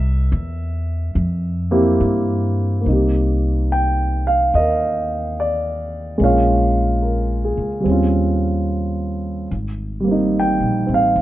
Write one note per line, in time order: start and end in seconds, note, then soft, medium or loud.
0.00 0.29 C2 medium
0.00 2.00 A#4 medium
0.00 1.99 E5 medium
0.32 1.12 E2 medium
1.15 1.98 F2 medium
1.71 2.80 A#3 medium
1.71 2.80 C4 soft
1.71 2.80 E4 soft
1.71 2.80 G4 medium
2.00 2.83 G2 medium
2.81 6.17 A#3 soft
2.81 6.19 C4 soft
2.86 4.50 C2 medium
2.86 6.21 D#4 soft
2.92 6.23 G4 soft
3.72 4.28 G5 medium
4.27 4.55 F5 medium
4.54 6.15 D#2 medium
4.54 6.17 A#4 soft
4.54 5.33 D#5 medium
5.40 6.23 D5 medium
6.18 7.53 A#1 medium
6.18 7.84 G#3 soft
6.18 7.85 A#3 soft
6.18 7.85 C#4 soft
6.23 7.86 F4 soft
6.23 7.83 C#5 soft
6.23 7.55 F5 medium
7.02 7.67 A#4 soft
7.44 8.02 G#4 soft
7.57 7.83 C#2 soft
7.80 9.48 G3 soft
7.80 9.50 C4 soft
7.85 9.46 D#2 medium
7.85 9.51 C#4 soft
7.92 9.53 F4 soft
9.51 10.57 G#1 medium
10.00 11.22 G3 soft
10.00 11.22 A#3 soft
10.08 10.85 C4 soft
10.08 11.22 D#4 soft
10.40 10.93 G5 medium
10.61 10.86 A#1 soft
10.87 11.14 A1 soft
10.87 11.22 C4 soft
10.94 11.20 F5 medium
11.16 11.22 D#2 medium